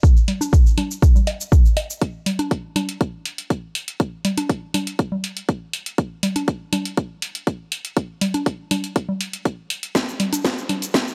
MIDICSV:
0, 0, Header, 1, 2, 480
1, 0, Start_track
1, 0, Tempo, 495868
1, 32, Time_signature, 4, 2, 24, 8
1, 10789, End_track
2, 0, Start_track
2, 0, Title_t, "Drums"
2, 31, Note_on_c, 9, 36, 104
2, 38, Note_on_c, 9, 82, 50
2, 128, Note_off_c, 9, 36, 0
2, 135, Note_off_c, 9, 82, 0
2, 162, Note_on_c, 9, 82, 33
2, 259, Note_off_c, 9, 82, 0
2, 271, Note_on_c, 9, 46, 92
2, 271, Note_on_c, 9, 64, 76
2, 368, Note_off_c, 9, 46, 0
2, 368, Note_off_c, 9, 64, 0
2, 396, Note_on_c, 9, 63, 91
2, 402, Note_on_c, 9, 82, 68
2, 493, Note_off_c, 9, 63, 0
2, 499, Note_off_c, 9, 82, 0
2, 511, Note_on_c, 9, 36, 93
2, 518, Note_on_c, 9, 82, 52
2, 608, Note_off_c, 9, 36, 0
2, 615, Note_off_c, 9, 82, 0
2, 642, Note_on_c, 9, 82, 33
2, 739, Note_off_c, 9, 82, 0
2, 751, Note_on_c, 9, 46, 91
2, 751, Note_on_c, 9, 63, 81
2, 751, Note_on_c, 9, 64, 66
2, 848, Note_off_c, 9, 46, 0
2, 848, Note_off_c, 9, 63, 0
2, 848, Note_off_c, 9, 64, 0
2, 882, Note_on_c, 9, 82, 61
2, 979, Note_off_c, 9, 82, 0
2, 991, Note_on_c, 9, 36, 101
2, 998, Note_on_c, 9, 82, 54
2, 1088, Note_off_c, 9, 36, 0
2, 1095, Note_off_c, 9, 82, 0
2, 1116, Note_on_c, 9, 64, 72
2, 1122, Note_on_c, 9, 82, 31
2, 1212, Note_off_c, 9, 64, 0
2, 1219, Note_off_c, 9, 82, 0
2, 1231, Note_on_c, 9, 46, 86
2, 1231, Note_on_c, 9, 60, 58
2, 1328, Note_off_c, 9, 46, 0
2, 1328, Note_off_c, 9, 60, 0
2, 1362, Note_on_c, 9, 82, 64
2, 1458, Note_off_c, 9, 82, 0
2, 1471, Note_on_c, 9, 36, 99
2, 1478, Note_on_c, 9, 82, 54
2, 1568, Note_off_c, 9, 36, 0
2, 1574, Note_off_c, 9, 82, 0
2, 1602, Note_on_c, 9, 82, 31
2, 1698, Note_off_c, 9, 82, 0
2, 1711, Note_on_c, 9, 46, 90
2, 1711, Note_on_c, 9, 60, 62
2, 1807, Note_off_c, 9, 46, 0
2, 1808, Note_off_c, 9, 60, 0
2, 1841, Note_on_c, 9, 82, 60
2, 1938, Note_off_c, 9, 82, 0
2, 1951, Note_on_c, 9, 36, 110
2, 1951, Note_on_c, 9, 42, 49
2, 2048, Note_off_c, 9, 36, 0
2, 2048, Note_off_c, 9, 42, 0
2, 2191, Note_on_c, 9, 46, 100
2, 2191, Note_on_c, 9, 64, 83
2, 2288, Note_off_c, 9, 46, 0
2, 2288, Note_off_c, 9, 64, 0
2, 2314, Note_on_c, 9, 63, 92
2, 2315, Note_on_c, 9, 42, 65
2, 2411, Note_off_c, 9, 63, 0
2, 2412, Note_off_c, 9, 42, 0
2, 2431, Note_on_c, 9, 36, 102
2, 2431, Note_on_c, 9, 42, 51
2, 2528, Note_off_c, 9, 36, 0
2, 2528, Note_off_c, 9, 42, 0
2, 2670, Note_on_c, 9, 63, 85
2, 2670, Note_on_c, 9, 64, 72
2, 2671, Note_on_c, 9, 46, 98
2, 2767, Note_off_c, 9, 63, 0
2, 2767, Note_off_c, 9, 64, 0
2, 2768, Note_off_c, 9, 46, 0
2, 2795, Note_on_c, 9, 42, 63
2, 2892, Note_off_c, 9, 42, 0
2, 2911, Note_on_c, 9, 36, 115
2, 2911, Note_on_c, 9, 42, 49
2, 3008, Note_off_c, 9, 36, 0
2, 3008, Note_off_c, 9, 42, 0
2, 3151, Note_on_c, 9, 46, 94
2, 3248, Note_off_c, 9, 46, 0
2, 3275, Note_on_c, 9, 42, 63
2, 3372, Note_off_c, 9, 42, 0
2, 3391, Note_on_c, 9, 36, 97
2, 3391, Note_on_c, 9, 42, 51
2, 3488, Note_off_c, 9, 36, 0
2, 3488, Note_off_c, 9, 42, 0
2, 3631, Note_on_c, 9, 46, 96
2, 3728, Note_off_c, 9, 46, 0
2, 3755, Note_on_c, 9, 42, 62
2, 3852, Note_off_c, 9, 42, 0
2, 3871, Note_on_c, 9, 36, 117
2, 3871, Note_on_c, 9, 42, 48
2, 3968, Note_off_c, 9, 36, 0
2, 3968, Note_off_c, 9, 42, 0
2, 4111, Note_on_c, 9, 46, 102
2, 4112, Note_on_c, 9, 64, 88
2, 4208, Note_off_c, 9, 46, 0
2, 4208, Note_off_c, 9, 64, 0
2, 4235, Note_on_c, 9, 42, 64
2, 4235, Note_on_c, 9, 63, 88
2, 4332, Note_off_c, 9, 42, 0
2, 4332, Note_off_c, 9, 63, 0
2, 4351, Note_on_c, 9, 36, 102
2, 4351, Note_on_c, 9, 42, 52
2, 4448, Note_off_c, 9, 36, 0
2, 4448, Note_off_c, 9, 42, 0
2, 4591, Note_on_c, 9, 46, 106
2, 4591, Note_on_c, 9, 63, 80
2, 4591, Note_on_c, 9, 64, 73
2, 4688, Note_off_c, 9, 46, 0
2, 4688, Note_off_c, 9, 63, 0
2, 4688, Note_off_c, 9, 64, 0
2, 4715, Note_on_c, 9, 42, 63
2, 4812, Note_off_c, 9, 42, 0
2, 4831, Note_on_c, 9, 36, 113
2, 4831, Note_on_c, 9, 42, 52
2, 4928, Note_off_c, 9, 36, 0
2, 4928, Note_off_c, 9, 42, 0
2, 4955, Note_on_c, 9, 64, 84
2, 5052, Note_off_c, 9, 64, 0
2, 5071, Note_on_c, 9, 46, 95
2, 5168, Note_off_c, 9, 46, 0
2, 5195, Note_on_c, 9, 42, 62
2, 5292, Note_off_c, 9, 42, 0
2, 5311, Note_on_c, 9, 36, 109
2, 5311, Note_on_c, 9, 42, 49
2, 5408, Note_off_c, 9, 36, 0
2, 5408, Note_off_c, 9, 42, 0
2, 5551, Note_on_c, 9, 46, 98
2, 5648, Note_off_c, 9, 46, 0
2, 5675, Note_on_c, 9, 42, 59
2, 5772, Note_off_c, 9, 42, 0
2, 5791, Note_on_c, 9, 36, 119
2, 5791, Note_on_c, 9, 42, 48
2, 5888, Note_off_c, 9, 36, 0
2, 5888, Note_off_c, 9, 42, 0
2, 6031, Note_on_c, 9, 46, 109
2, 6031, Note_on_c, 9, 64, 90
2, 6128, Note_off_c, 9, 46, 0
2, 6128, Note_off_c, 9, 64, 0
2, 6155, Note_on_c, 9, 42, 63
2, 6155, Note_on_c, 9, 63, 84
2, 6252, Note_off_c, 9, 42, 0
2, 6252, Note_off_c, 9, 63, 0
2, 6271, Note_on_c, 9, 36, 109
2, 6271, Note_on_c, 9, 42, 51
2, 6368, Note_off_c, 9, 36, 0
2, 6368, Note_off_c, 9, 42, 0
2, 6511, Note_on_c, 9, 46, 107
2, 6511, Note_on_c, 9, 63, 80
2, 6511, Note_on_c, 9, 64, 78
2, 6608, Note_off_c, 9, 46, 0
2, 6608, Note_off_c, 9, 63, 0
2, 6608, Note_off_c, 9, 64, 0
2, 6635, Note_on_c, 9, 42, 62
2, 6732, Note_off_c, 9, 42, 0
2, 6751, Note_on_c, 9, 36, 121
2, 6751, Note_on_c, 9, 42, 48
2, 6848, Note_off_c, 9, 36, 0
2, 6848, Note_off_c, 9, 42, 0
2, 6991, Note_on_c, 9, 46, 100
2, 7088, Note_off_c, 9, 46, 0
2, 7115, Note_on_c, 9, 42, 61
2, 7212, Note_off_c, 9, 42, 0
2, 7231, Note_on_c, 9, 36, 105
2, 7231, Note_on_c, 9, 42, 48
2, 7328, Note_off_c, 9, 36, 0
2, 7328, Note_off_c, 9, 42, 0
2, 7472, Note_on_c, 9, 46, 100
2, 7568, Note_off_c, 9, 46, 0
2, 7596, Note_on_c, 9, 42, 57
2, 7692, Note_off_c, 9, 42, 0
2, 7711, Note_on_c, 9, 36, 119
2, 7712, Note_on_c, 9, 42, 47
2, 7808, Note_off_c, 9, 36, 0
2, 7808, Note_off_c, 9, 42, 0
2, 7951, Note_on_c, 9, 46, 102
2, 7952, Note_on_c, 9, 64, 91
2, 8048, Note_off_c, 9, 46, 0
2, 8048, Note_off_c, 9, 64, 0
2, 8075, Note_on_c, 9, 63, 84
2, 8076, Note_on_c, 9, 42, 63
2, 8172, Note_off_c, 9, 42, 0
2, 8172, Note_off_c, 9, 63, 0
2, 8191, Note_on_c, 9, 36, 105
2, 8192, Note_on_c, 9, 42, 48
2, 8288, Note_off_c, 9, 36, 0
2, 8288, Note_off_c, 9, 42, 0
2, 8431, Note_on_c, 9, 46, 107
2, 8432, Note_on_c, 9, 63, 79
2, 8432, Note_on_c, 9, 64, 76
2, 8528, Note_off_c, 9, 46, 0
2, 8528, Note_off_c, 9, 63, 0
2, 8528, Note_off_c, 9, 64, 0
2, 8555, Note_on_c, 9, 42, 64
2, 8652, Note_off_c, 9, 42, 0
2, 8671, Note_on_c, 9, 36, 120
2, 8672, Note_on_c, 9, 42, 52
2, 8768, Note_off_c, 9, 36, 0
2, 8768, Note_off_c, 9, 42, 0
2, 8795, Note_on_c, 9, 64, 84
2, 8892, Note_off_c, 9, 64, 0
2, 8912, Note_on_c, 9, 46, 102
2, 9008, Note_off_c, 9, 46, 0
2, 9036, Note_on_c, 9, 42, 60
2, 9132, Note_off_c, 9, 42, 0
2, 9151, Note_on_c, 9, 36, 108
2, 9152, Note_on_c, 9, 42, 48
2, 9248, Note_off_c, 9, 36, 0
2, 9248, Note_off_c, 9, 42, 0
2, 9391, Note_on_c, 9, 46, 104
2, 9488, Note_off_c, 9, 46, 0
2, 9515, Note_on_c, 9, 42, 59
2, 9612, Note_off_c, 9, 42, 0
2, 9631, Note_on_c, 9, 36, 118
2, 9632, Note_on_c, 9, 38, 45
2, 9632, Note_on_c, 9, 42, 51
2, 9638, Note_on_c, 9, 82, 53
2, 9728, Note_off_c, 9, 36, 0
2, 9728, Note_off_c, 9, 38, 0
2, 9728, Note_off_c, 9, 42, 0
2, 9735, Note_off_c, 9, 82, 0
2, 9762, Note_on_c, 9, 82, 35
2, 9859, Note_off_c, 9, 82, 0
2, 9872, Note_on_c, 9, 46, 97
2, 9872, Note_on_c, 9, 64, 89
2, 9968, Note_off_c, 9, 46, 0
2, 9969, Note_off_c, 9, 64, 0
2, 9996, Note_on_c, 9, 42, 61
2, 9996, Note_on_c, 9, 63, 86
2, 10002, Note_on_c, 9, 82, 68
2, 10092, Note_off_c, 9, 42, 0
2, 10092, Note_off_c, 9, 63, 0
2, 10099, Note_off_c, 9, 82, 0
2, 10111, Note_on_c, 9, 36, 102
2, 10112, Note_on_c, 9, 38, 50
2, 10112, Note_on_c, 9, 42, 51
2, 10118, Note_on_c, 9, 82, 58
2, 10208, Note_off_c, 9, 36, 0
2, 10208, Note_off_c, 9, 38, 0
2, 10208, Note_off_c, 9, 42, 0
2, 10215, Note_off_c, 9, 82, 0
2, 10243, Note_on_c, 9, 82, 35
2, 10339, Note_off_c, 9, 82, 0
2, 10351, Note_on_c, 9, 46, 100
2, 10352, Note_on_c, 9, 63, 80
2, 10352, Note_on_c, 9, 64, 71
2, 10448, Note_off_c, 9, 46, 0
2, 10448, Note_off_c, 9, 63, 0
2, 10448, Note_off_c, 9, 64, 0
2, 10475, Note_on_c, 9, 42, 62
2, 10482, Note_on_c, 9, 82, 63
2, 10572, Note_off_c, 9, 42, 0
2, 10579, Note_off_c, 9, 82, 0
2, 10591, Note_on_c, 9, 36, 116
2, 10591, Note_on_c, 9, 38, 52
2, 10591, Note_on_c, 9, 42, 50
2, 10598, Note_on_c, 9, 82, 56
2, 10688, Note_off_c, 9, 36, 0
2, 10688, Note_off_c, 9, 38, 0
2, 10688, Note_off_c, 9, 42, 0
2, 10695, Note_off_c, 9, 82, 0
2, 10722, Note_on_c, 9, 82, 32
2, 10789, Note_off_c, 9, 82, 0
2, 10789, End_track
0, 0, End_of_file